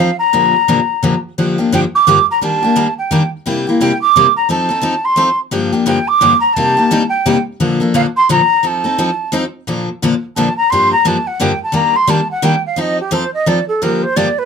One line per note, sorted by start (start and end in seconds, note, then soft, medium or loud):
0.00 0.16 F5 medium
0.19 1.19 A#5 medium
0.33 0.54 A#2 medium
0.33 0.54 D3 medium
0.33 0.54 F3 medium
0.33 0.54 A#3 medium
0.33 0.54 D4 medium
0.33 0.54 G4 medium
0.68 0.79 A#2 medium
0.68 0.79 D3 medium
0.68 0.79 F3 medium
0.68 0.79 A#3 medium
0.68 0.79 D4 medium
0.68 0.79 G4 medium
1.03 1.13 A#2 medium
1.03 1.13 D3 medium
1.03 1.14 F3 medium
1.03 1.14 A#3 medium
1.03 1.14 D4 medium
1.03 1.14 G4 medium
1.38 1.57 G2 medium
1.38 1.58 D3 medium
1.38 1.58 F3 medium
1.38 1.58 A#3 medium
1.38 1.58 D4 medium
1.38 1.57 G4 medium
1.58 1.72 F3 soft
1.58 1.72 A#3 soft
1.58 1.71 D4 medium
1.58 1.71 G4 medium
1.72 1.83 G2 medium
1.72 1.83 D3 medium
1.72 1.83 F3 medium
1.72 1.83 A#3 medium
1.72 1.84 D4 medium
1.72 1.84 G4 loud
1.72 1.80 G5 medium
1.95 2.26 D6 loud
2.07 2.17 G2 medium
2.07 2.18 D3 medium
2.07 2.18 F3 medium
2.07 2.18 A#3 medium
2.07 2.18 D4 medium
2.07 2.18 G4 medium
2.31 2.42 A#5 medium
2.41 2.61 D#3 medium
2.41 2.62 G3 medium
2.41 2.62 A#3 medium
2.41 2.62 D4 medium
2.41 2.61 G4 medium
2.41 2.94 A5 loud
2.63 2.75 A#3 soft
2.63 2.75 D4 medium
2.63 2.75 G4 medium
2.76 2.86 D#3 medium
2.76 2.87 G3 medium
2.76 2.87 A#3 medium
2.76 2.87 D4 medium
2.76 2.87 G4 medium
2.98 3.30 G5 medium
3.11 3.21 D#3 medium
3.11 3.21 G3 medium
3.11 3.22 A#3 medium
3.11 3.22 D4 medium
3.11 3.22 G4 loud
3.46 3.65 C3 medium
3.46 3.66 G3 medium
3.46 3.65 A#3 medium
3.46 3.66 E4 medium
3.46 3.66 G4 medium
3.67 3.80 A#3 soft
3.67 3.80 E4 medium
3.67 3.79 G4 medium
3.81 3.91 C3 medium
3.81 3.91 G3 medium
3.81 3.91 A#3 medium
3.81 3.91 E4 medium
3.81 3.92 G4 medium
3.81 3.99 G5 medium
4.01 4.33 D6 loud
4.16 4.26 C3 medium
4.16 4.26 G3 medium
4.16 4.26 A#3 medium
4.16 4.26 E4 medium
4.16 4.26 G4 medium
4.36 4.48 A#5 medium
4.49 4.69 F3 medium
4.49 4.69 C4 medium
4.49 4.69 D#4 medium
4.49 4.68 A4 medium
4.49 5.06 A5 medium
4.69 4.81 C4 soft
4.69 4.82 D#4 medium
4.69 4.82 A4 medium
4.82 4.93 F3 medium
4.82 4.94 C4 medium
4.82 4.94 D#4 medium
4.82 4.94 A4 medium
5.05 5.39 C6 medium
5.16 5.28 F3 medium
5.16 5.28 C4 medium
5.16 5.28 D#4 medium
5.16 5.29 A4 medium
5.51 5.72 G2 medium
5.51 5.72 D3 medium
5.51 5.72 F3 medium
5.51 5.72 A#3 medium
5.51 5.72 D4 medium
5.51 5.71 G4 medium
5.72 5.85 F3 soft
5.72 5.86 A#3 soft
5.72 5.86 D4 medium
5.72 5.86 G4 medium
5.86 5.97 G2 medium
5.86 5.97 D3 medium
5.86 5.98 F3 medium
5.86 5.98 A#3 medium
5.86 5.98 D4 medium
5.86 5.98 G4 medium
5.86 6.09 G5 medium
6.08 6.40 D6 loud
6.21 6.32 G2 medium
6.21 6.32 D3 medium
6.21 6.32 F3 medium
6.21 6.32 A#3 medium
6.21 6.33 D4 medium
6.21 6.33 G4 medium
6.40 6.55 A#5 medium
6.53 6.76 C3 medium
6.53 6.76 G3 medium
6.53 6.76 A#3 medium
6.53 6.76 D#4 medium
6.53 7.08 A5 loud
6.58 6.76 G4 medium
6.77 6.90 A#3 soft
6.77 6.91 D#4 medium
6.77 6.90 G4 medium
6.91 7.02 C3 medium
6.91 7.02 G3 medium
6.91 7.02 A#3 medium
6.91 7.02 D#4 loud
6.91 7.02 G4 medium
7.09 7.42 G5 medium
7.26 7.36 C3 medium
7.26 7.36 G3 medium
7.26 7.36 A#3 medium
7.26 7.37 D#4 medium
7.26 7.37 G4 medium
7.60 7.80 A#2 medium
7.60 7.80 D3 medium
7.60 7.80 F3 medium
7.60 7.80 A#3 medium
7.60 7.80 D4 medium
7.60 7.79 A4 medium
7.80 7.94 F3 soft
7.80 7.93 A#3 soft
7.80 7.94 D4 medium
7.80 7.93 A4 medium
7.94 8.05 A#2 medium
7.94 8.05 D3 medium
7.94 8.05 F3 medium
7.94 8.05 A#3 medium
7.94 8.06 D4 medium
7.94 8.06 A4 medium
7.94 8.01 F5 medium
8.16 8.28 C6 loud
8.29 8.40 A#2 medium
8.29 8.40 D3 medium
8.29 8.40 F3 medium
8.29 8.40 A#3 medium
8.29 8.40 D4 loud
8.29 8.41 A4 loud
8.29 8.68 A#5 loud
8.63 8.83 F3 medium
8.63 8.83 C4 medium
8.63 8.84 D#4 medium
8.63 8.83 A4 medium
8.63 9.34 A5 medium
8.84 8.97 C4 soft
8.84 8.98 D#4 medium
8.84 8.97 A4 medium
8.98 9.09 F3 medium
8.98 9.09 C4 medium
8.98 9.09 D#4 loud
8.98 9.09 A4 medium
9.32 9.43 F3 medium
9.32 9.43 C4 medium
9.32 9.44 D#4 loud
9.32 9.44 A4 medium
9.67 9.88 A#2 medium
9.67 9.88 D3 medium
9.67 9.88 F3 medium
9.67 9.88 A#3 medium
9.67 9.88 D4 medium
9.67 9.89 A4 medium
10.02 10.13 A#2 medium
10.02 10.13 D3 medium
10.02 10.13 F3 medium
10.02 10.14 A#3 medium
10.02 10.13 D4 loud
10.02 10.14 A4 medium
10.36 10.47 A#2 medium
10.36 10.47 D3 medium
10.36 10.48 F3 medium
10.36 10.48 A#3 medium
10.36 10.48 D4 loud
10.36 10.48 A4 loud
10.36 10.56 A5 medium
10.57 10.72 A#5 medium
10.70 10.92 G2 medium
10.70 10.92 D3 medium
10.70 10.92 F3 medium
10.70 10.92 A#3 medium
10.70 10.92 D4 medium
10.70 10.93 G4 medium
10.70 10.91 C6 loud
10.92 11.08 A#5 loud
11.05 11.16 G2 medium
11.05 11.16 D3 medium
11.05 11.16 F3 medium
11.05 11.16 A#3 medium
11.05 11.17 D4 medium
11.05 11.17 G4 medium
11.05 11.28 A5 medium
11.27 11.43 F#5 medium
11.40 11.51 G2 medium
11.40 11.51 D3 medium
11.40 11.51 F3 medium
11.40 11.51 A#3 medium
11.40 11.51 D4 medium
11.40 11.52 G4 medium
11.40 11.61 G5 medium
11.63 11.78 A5 medium
11.72 11.94 D#3 medium
11.72 11.94 G3 medium
11.72 11.95 A#3 medium
11.72 11.95 D4 medium
11.72 11.95 G4 medium
11.76 11.97 A#5 medium
11.96 12.11 C6 loud
12.07 12.19 D#3 medium
12.07 12.19 G3 medium
12.07 12.20 A#3 loud
12.07 12.20 D4 medium
12.07 12.20 G4 medium
12.07 12.30 A5 medium
12.31 12.46 F#5 medium
12.42 12.54 D#3 medium
12.42 12.54 G3 medium
12.42 12.54 A#3 medium
12.42 12.54 D4 medium
12.42 12.55 G4 medium
12.42 12.65 G5 medium
12.66 12.82 F5 medium
12.76 12.98 F3 medium
12.76 12.98 C4 medium
12.76 12.98 D#4 medium
12.76 12.99 A4 medium
12.80 13.00 D#5 medium
13.00 13.15 G4 medium
13.11 13.23 F3 medium
13.11 13.23 C4 medium
13.11 13.23 D#4 medium
13.11 13.23 A4 loud
13.11 13.33 C5 medium
13.34 13.49 D#5 medium
13.46 13.58 F3 medium
13.46 13.58 C4 medium
13.46 13.58 D#4 medium
13.46 13.58 A4 medium
13.46 13.67 D5 medium
13.68 13.84 A4 medium
13.82 14.02 G2 medium
13.82 14.03 D3 medium
13.82 14.03 F3 medium
13.82 14.03 A#3 medium
13.82 14.03 D4 medium
13.82 14.03 G4 medium
13.82 14.04 A#4 medium
14.02 14.18 C5 medium
14.16 14.27 G2 medium
14.16 14.27 D3 medium
14.16 14.28 F3 medium
14.16 14.28 A#3 medium
14.16 14.28 D4 loud
14.16 14.28 G4 medium
14.16 14.40 D5 medium
14.38 14.45 B4 medium